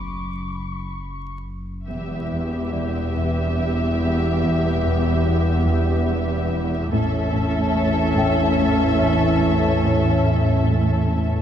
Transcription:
Already playing: synth drone F#1, violin section B5 C#6 D6
0.69 violin section C#6
1.87 double bass section E1, cello section E2, synth drone E2, trombone section E3 G3, french horn section B3 E4, viola section B3, violin section G4 E5
2.31 cello section E2
2.73 cello section E2, celesta D5
3.17 cello section E2
3.58 cello section E2
4.01 cello section E2
4.43 cello section E2
4.84 cello section E2
5.26 cello section E2
5.68 cello section E2
6.09 cello section E2
6.51 cello section E2
6.92 double bass section A1, synth drone E2, cello section A2, trombone section E3 A3, viola section C#4, french horn section C#4 E4, violin section A4 E5
7.33 cello section A2
7.75 cello section A2
8.17 cello section A2, celesta G5
8.59 cello section A2
9.01 cello section A2
9.43 cello section A2
9.86 cello section A2
10.29 cello section A2
10.71 cello section A2
11.13 cello section A2

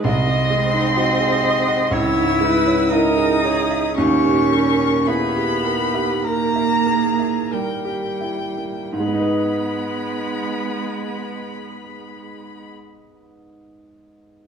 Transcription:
0.04 grand piano C2, cello C4, viola D#5, violin C6
0.27 grand piano C3
0.50 grand piano G#3
0.74 grand piano D#4
0.96 grand piano F#4, viola D#5
1.20 grand piano G#4
1.43 grand piano D#5
1.67 grand piano F#5
1.91 grand piano C#2, cello E4, viola C#5, violin E6
2.16 grand piano G#2
2.41 grand piano G#3, viola B4
2.66 grand piano C#4
2.89 cello D#4, grand piano E4, viola A#4, violin D#6
3.17 grand piano G#4
3.44 viola G#4, grand piano C#5
3.71 grand piano E5
3.96 grand piano D#2, cello C#4, viola G4, violin C#6
4.25 grand piano A#2
4.52 grand piano G3, viola A#4
4.80 grand piano A#3
5.07 cello B3, grand piano E4, viola G#4, violin B5
5.36 grand piano G4
5.65 viola G4, grand piano A#4
5.94 grand piano E5
6.24 cello A#3, grand piano A#4, viola A#4, violin A#5
6.56 grand piano E5
6.87 viola G#4, grand piano A#4
7.19 grand piano E5
7.51 cello G3, grand piano A#4, viola A#4, violin G5
7.85 grand piano G4
8.21 grand piano E4
8.58 grand piano A#3
8.93 grand piano G#2, viola G#3, cello B3, violin B5
9.00 grand piano G#3
9.07 grand piano B3
9.14 grand piano D#4
9.21 grand piano B4

